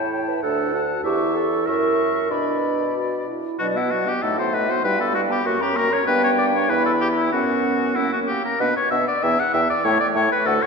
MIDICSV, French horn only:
0, 0, Header, 1, 2, 480
1, 0, Start_track
1, 0, Key_signature, 2, "minor"
1, 0, Tempo, 617920
1, 809, Time_signature, 2, 2, 24, 8
1, 1296, Tempo, 643087
1, 2736, Tempo, 618557
1, 5136, Tempo, 634249
1, 7056, Tempo, 612245
1, 8182, End_track
2, 0, Start_track
2, 0, Title_t, "French horn"
2, 0, Program_c, 0, 60
2, 0, Note_on_c, 0, 64, 43
2, 336, Note_on_c, 0, 62, 44
2, 347, Note_off_c, 0, 64, 0
2, 570, Note_on_c, 0, 66, 50
2, 581, Note_off_c, 0, 62, 0
2, 805, Note_off_c, 0, 66, 0
2, 810, Note_on_c, 0, 64, 61
2, 1754, Note_off_c, 0, 64, 0
2, 1773, Note_on_c, 0, 62, 42
2, 2199, Note_off_c, 0, 62, 0
2, 2252, Note_on_c, 0, 66, 40
2, 2499, Note_on_c, 0, 64, 37
2, 2510, Note_off_c, 0, 66, 0
2, 2734, Note_off_c, 0, 64, 0
2, 2738, Note_on_c, 0, 54, 45
2, 2857, Note_on_c, 0, 59, 43
2, 2868, Note_off_c, 0, 54, 0
2, 2981, Note_on_c, 0, 54, 42
2, 2993, Note_off_c, 0, 59, 0
2, 3100, Note_on_c, 0, 59, 39
2, 3111, Note_off_c, 0, 54, 0
2, 3217, Note_off_c, 0, 59, 0
2, 3221, Note_on_c, 0, 57, 42
2, 3339, Note_on_c, 0, 59, 42
2, 3351, Note_off_c, 0, 57, 0
2, 3461, Note_on_c, 0, 57, 44
2, 3473, Note_off_c, 0, 59, 0
2, 3583, Note_on_c, 0, 59, 42
2, 3595, Note_off_c, 0, 57, 0
2, 3693, Note_off_c, 0, 59, 0
2, 3698, Note_on_c, 0, 55, 53
2, 3820, Note_on_c, 0, 59, 47
2, 3831, Note_off_c, 0, 55, 0
2, 3937, Note_on_c, 0, 55, 51
2, 3949, Note_off_c, 0, 59, 0
2, 4053, Note_on_c, 0, 59, 47
2, 4065, Note_off_c, 0, 55, 0
2, 4168, Note_off_c, 0, 59, 0
2, 4173, Note_on_c, 0, 58, 54
2, 4292, Note_on_c, 0, 61, 53
2, 4304, Note_off_c, 0, 58, 0
2, 4410, Note_on_c, 0, 58, 50
2, 4422, Note_off_c, 0, 61, 0
2, 4530, Note_on_c, 0, 61, 46
2, 4541, Note_off_c, 0, 58, 0
2, 4646, Note_off_c, 0, 61, 0
2, 4651, Note_on_c, 0, 59, 62
2, 5007, Note_off_c, 0, 59, 0
2, 5139, Note_on_c, 0, 59, 61
2, 5607, Note_off_c, 0, 59, 0
2, 5617, Note_on_c, 0, 59, 50
2, 6097, Note_on_c, 0, 58, 49
2, 6108, Note_off_c, 0, 59, 0
2, 6338, Note_off_c, 0, 58, 0
2, 6581, Note_on_c, 0, 59, 53
2, 6689, Note_off_c, 0, 59, 0
2, 6819, Note_on_c, 0, 59, 48
2, 6926, Note_off_c, 0, 59, 0
2, 7057, Note_on_c, 0, 59, 52
2, 7166, Note_off_c, 0, 59, 0
2, 7299, Note_on_c, 0, 59, 51
2, 7407, Note_off_c, 0, 59, 0
2, 7538, Note_on_c, 0, 57, 67
2, 7645, Note_off_c, 0, 57, 0
2, 7777, Note_on_c, 0, 57, 56
2, 7885, Note_off_c, 0, 57, 0
2, 8018, Note_on_c, 0, 57, 66
2, 8126, Note_off_c, 0, 57, 0
2, 8182, End_track
0, 0, End_of_file